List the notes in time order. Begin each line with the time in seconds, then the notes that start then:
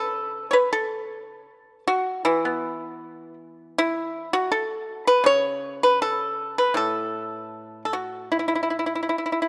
Already playing: C#3 A4
0.51 B4 C#5
0.73 A4
1.88 F#4
2.25 E3 E4
2.45 B3
3.78 E4
4.33 F#4
4.52 A4
5.07 B4
5.24 C#3 C#5
5.83 B4
6.02 A4
6.58 B4
6.74 A2 A4
7.85 A4
7.93 F#4
8.32 E4
8.39 E4
8.48 E4
8.55 E4
8.63 E4
8.70 E4
8.79 E4
8.86 E4
8.95 E4
9.03 E4
9.09 E4
9.18 E4
9.26 E4
9.32 E4
9.42 E4